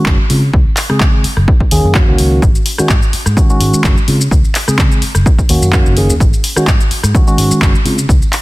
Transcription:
0.06 fingered electric bass F#1, kick, clap
0.29 tine electric piano C#3 G#3 C4 F4, fingered electric bass C#3, open hi-hat
0.43 tambourine
0.54 fingered electric bass C#2, kick
0.66 tambourine
0.77 clap, open hi-hat
0.89 tine electric piano C#3 G#3 C4 G#4, muted fingered electric bass stroke, cross-stick, tambourine
1.00 fingered electric bass C#3, kick, clap
1.13 tambourine
1.24 muted fingered electric bass stroke, open hi-hat
1.37 fingered electric bass F#1, cross-stick, tambourine
1.48 kick, tambourine
1.60 muted fingered electric bass stroke, kick, tambourine
1.71 fingered electric bass D#2, tine electric piano D#3 A#3 C#4 G#4, open hi-hat
1.84 fingered electric bass F#2, tambourine
1.95 tine electric piano F#4, kick, clap
2.08 fingered electric bass C#2, tine electric piano D#3 A#3 C#4 F#4, tambourine
2.18 fingered electric bass C#2, open hi-hat
2.31 tambourine
2.42 fingered electric bass G#1, kick, shaker
2.55 tambourine, shaker
2.66 open hi-hat
2.78 tine electric piano D#3 G#3 C#4 F#4, muted fingered electric bass stroke, cross-stick, tambourine, shaker
2.89 fingered electric bass G#2, kick, clap, shaker
3.02 tambourine, shaker
3.13 muted fingered electric bass stroke, open hi-hat
3.26 fingered electric bass G#2, cross-stick, tambourine, shaker
3.37 tine electric piano D#3 G#3 C#4 F#4, kick, tambourine, shaker
3.49 tine electric piano D#3 G#3 C#4 F#4, muted fingered electric bass stroke, tambourine, shaker
3.60 fingered electric bass G#2, open hi-hat
3.73 muted fingered electric bass stroke, tambourine, shaker
3.84 fingered electric bass F#1, tine electric piano D#3 G#3 C#4 F#4, kick, clap, shaker
3.97 tambourine, shaker
4.08 tine electric piano C#3 G#3 C4 F4, fingered electric bass C#3, open hi-hat
4.21 tambourine, shaker
4.31 fingered electric bass C#2, kick, shaker
4.44 tambourine, shaker
4.55 clap, open hi-hat
4.67 tine electric piano C#3 G#3 C4 G#4, muted fingered electric bass stroke, cross-stick, tambourine, shaker
4.79 fingered electric bass C#3, kick, clap, shaker
4.91 tambourine, shaker
5.02 muted fingered electric bass stroke, open hi-hat
5.15 fingered electric bass F#1, cross-stick, tambourine, shaker
5.25 kick, tambourine, shaker
5.38 muted fingered electric bass stroke, kick, tambourine, shaker
5.49 fingered electric bass D#2, tine electric piano D#3 A#3 C#4 F#4, open hi-hat
5.62 fingered electric bass F#2, tambourine, shaker
5.73 tine electric piano D#3 A#3 C#4 F#4, kick, clap, shaker
5.85 fingered electric bass F#1, tambourine, shaker
5.97 tine electric piano D#3 A#3 C#4 G#4, open hi-hat
6.09 fingered electric bass D#2, tambourine, shaker
6.20 fingered electric bass G#1, kick, tambourine, shaker
6.33 tambourine, shaker
6.44 open hi-hat
6.56 tine electric piano D#3 G#3 C#4 F#4, muted fingered electric bass stroke, cross-stick, tambourine, shaker
6.67 fingered electric bass G#2, kick, clap, shaker
6.81 tambourine, shaker
6.91 muted fingered electric bass stroke, open hi-hat
7.03 fingered electric bass G#2, cross-stick, tambourine, shaker
7.14 tine electric piano D#3 G#3 C#4 F#4, kick, shaker
7.27 tine electric piano D#3 G#3 C#4 F#4, muted fingered electric bass stroke, tambourine, shaker
7.38 fingered electric bass G#2, open hi-hat
7.50 muted fingered electric bass stroke, tambourine, shaker
7.62 fingered electric bass F#1, tine electric piano G#3 C#4 F#4, kick, clap, shaker
7.75 tambourine, shaker
7.85 fingered electric bass C#3, tine electric piano C#3 G#3 C4 F4, open hi-hat
7.98 tambourine, shaker
8.08 fingered electric bass C#2, kick, tambourine, shaker
8.22 tambourine, shaker
8.33 clap, open hi-hat

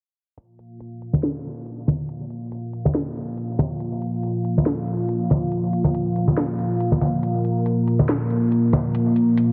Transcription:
0.38 analog synth pad A#3 F4 F5, closed hi-hat
0.59 closed hi-hat
0.80 closed hi-hat
1.02 closed hi-hat
1.13 high conga
1.23 snare, closed hi-hat
1.45 closed hi-hat
1.66 closed hi-hat
1.87 closed hi-hat, high conga
2.09 closed hi-hat
2.30 closed hi-hat
2.52 closed hi-hat
2.73 closed hi-hat
2.85 high conga
2.95 snare, closed hi-hat
3.16 closed hi-hat
3.37 closed hi-hat
3.59 closed hi-hat, high conga
3.80 closed hi-hat
4.02 closed hi-hat
4.23 closed hi-hat
4.45 closed hi-hat
4.58 high conga
4.66 snare, closed hi-hat
4.88 closed hi-hat
5.09 closed hi-hat
5.30 closed hi-hat, high conga
5.52 closed hi-hat
5.73 closed hi-hat
5.84 high conga
5.94 closed hi-hat
6.16 closed hi-hat
6.28 high conga
6.37 snare, closed hi-hat
6.59 closed hi-hat
6.80 closed hi-hat
6.92 high conga
7.01 closed hi-hat, high conga
7.23 analog synth pad A#4, closed hi-hat
7.45 closed hi-hat
7.66 closed hi-hat
7.88 closed hi-hat
7.99 high conga
8.09 snare, closed hi-hat
8.30 closed hi-hat
8.52 closed hi-hat
8.73 closed hi-hat, high conga
8.95 closed hi-hat
9.16 closed hi-hat
9.37 closed hi-hat

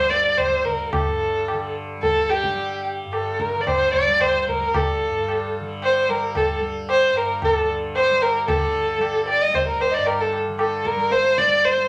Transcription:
Already playing: tanpura G2 D3 G3, violin C5
0.10 violin D5, tabla te
0.37 violin C5, tabla na, tabla ge
0.47 tanpura G3
0.64 violin A#4, tabla ge
0.92 violin A4, tabla na, tabla ge
1.01 tanpura G2
1.48 tanpura D3, tabla na
2.02 tanpura G3, violin A4, tabla tin, tabla ge
2.29 violin G4, tabla na
2.44 tabla ke
2.53 tanpura G3
2.58 tabla na
2.85 tabla na
3.05 tanpura G2
3.12 violin A4, tabla na
3.40 violin A#4, tabla ke
3.55 tanpura D3
3.61 violin D5
3.67 violin C5, tabla na, tabla ge
3.93 violin D5, tabla ge
4.07 tanpura G3
4.20 violin C5, tabla na, tabla ge
4.42 violin C5
4.48 violin A#4, tabla ge
4.58 tanpura G3
4.74 violin A4, tabla na, tabla ge
5.08 tanpura G2
5.28 tabla na
5.59 tanpura D3
5.82 violin C5, tabla na
6.09 tanpura G3, violin A#4, tabla na
6.35 violin A4, tabla na, tabla ge
6.60 tanpura G3
6.89 violin C5, tabla na
7.10 tanpura G2
7.16 violin A#4, tabla na
7.42 violin A4, tabla na, tabla ge
7.61 tanpura D3
7.95 violin C5, tabla na
8.10 tanpura G3
8.22 violin A#4, tabla na
8.47 tanpura D3, violin A4, tabla na, tabla ge
8.98 tanpura G3, tabla na
9.28 violin D5, tabla na
9.42 violin D#5
9.48 tanpura G3
9.54 violin C5, tabla tin, tabla ge
9.68 violin A#4
9.80 violin C5, tabla na
9.90 violin D5 D#5
9.97 tanpura G2
10.06 violin A#4, tabla na
10.20 violin A4
10.33 tabla na
10.46 tanpura D3
10.59 violin A4, tabla na
10.85 violin A#4, tabla ke
10.96 tanpura G3
11.11 violin C5, tabla te
11.24 tabla te
11.38 violin D5, tabla ke
11.45 tanpura G3
11.51 tabla te
11.64 violin C5, tabla te
11.77 tabla te

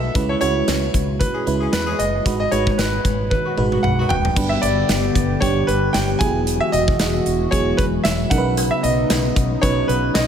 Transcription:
Already playing: fm electric piano A3 D#4 F#4 B4, grand piano E5
0.14 fretless electric bass C#2, fm electric piano G#3 C#4 E4 B4, kick, closed hi-hat
0.29 grand piano C#5
0.41 fretless electric bass C#2, fm electric piano G#3 C#4 E4 F#4, grand piano C#5, closed hi-hat
0.68 fretless electric bass C#2, snare, closed hi-hat
0.94 fretless electric bass C#2, kick, closed hi-hat
1.19 grand piano B4, kick, closed hi-hat
1.34 horn section E3 G#3 C#4 G#4
1.46 fretless electric bass C#2, fm electric piano G#3 C#4 E4 B4, closed hi-hat
1.61 horn section E3 G#3 C#4 G#4
1.72 fretless electric bass E2, grand piano B4, snare, closed hi-hat
1.87 horn section E3 G#3 C#4 G#4
1.99 fretless electric bass F#1, grand piano D#5, closed hi-hat
2.25 fretless electric bass G#1, fm electric piano G#3 D#4 F#4 B4, kick, closed hi-hat
2.40 grand piano D#5
2.51 fretless electric bass G#1, fm electric piano G#3 D#4 F#4 B4, grand piano C#5, closed hi-hat
2.67 kick
2.71 grand piano C#5
2.78 fretless electric bass G#1, grand piano B4, snare, closed hi-hat
3.05 fretless electric bass G#1, kick, closed hi-hat
3.30 grand piano B4, kick, high tom
3.45 horn section D#3 F#3 B3 F#4
3.57 fretless electric bass G#1, fm electric piano G#3 D#4 F#4 B4, mid tom
3.72 horn section D#3 F#3 B3 F#4, mid tom
3.83 fretless electric bass B1, grand piano F#5, mid tom
3.98 horn section D#3 F#3 B3 F#4
4.09 fretless electric bass E1, grand piano G5, floor tom
4.25 floor tom
4.36 fretless electric bass G1, analog synth pad D3 B3 G4, fm electric piano G3 B3 D4 B4, kick, crash
4.49 grand piano E5
4.62 fretless electric bass G1, grand piano D5, closed hi-hat
4.89 fretless electric bass G1, snare, closed hi-hat
5.15 fretless electric bass G1, kick, closed hi-hat
5.40 fretless electric bass G1, fm electric piano G3 B3 D4 G4, grand piano C#5, kick, closed hi-hat
5.67 fretless electric bass G1, grand piano B4, closed hi-hat
5.93 fretless electric bass G1, grand piano G5, snare, closed hi-hat
6.19 fretless electric bass E1, analog synth pad E3 G#3 F#4, fm electric piano F#3 B3 E4 G#4, grand piano G#5, kick, closed hi-hat
6.47 closed hi-hat
6.60 grand piano E5
6.72 fretless electric bass E1, grand piano D#5, closed hi-hat
6.88 kick
6.99 fretless electric bass E1, snare, closed hi-hat
7.26 fretless electric bass E1, closed hi-hat
7.51 fretless electric bass E1, fm electric piano F#3 B3 E4 G#4, grand piano C#5, kick, closed hi-hat
7.77 fretless electric bass E1, grand piano B4, kick, closed hi-hat
8.04 fretless electric bass E1, grand piano E5, snare, closed hi-hat
8.30 fretless electric bass B1, analog synth pad C#3 B3 D#4, fm electric piano F#3 C#4 D#4 A#4, grand piano F#5, kick, closed hi-hat
8.38 fm electric piano B4
8.57 closed hi-hat, cowbell
8.71 grand piano E5
8.83 fretless electric bass B1, grand piano D#5, closed hi-hat
9.10 fretless electric bass B1, snare, closed hi-hat, cowbell
9.36 fretless electric bass B1, kick, closed hi-hat
9.62 fretless electric bass B1, fm electric piano F#3 C#4 D#4 B4, grand piano C#5, kick, closed hi-hat, cowbell
9.88 fretless electric bass B1, grand piano B4, closed hi-hat
10.14 fretless electric bass B1, grand piano D#5, snare, closed hi-hat, cowbell

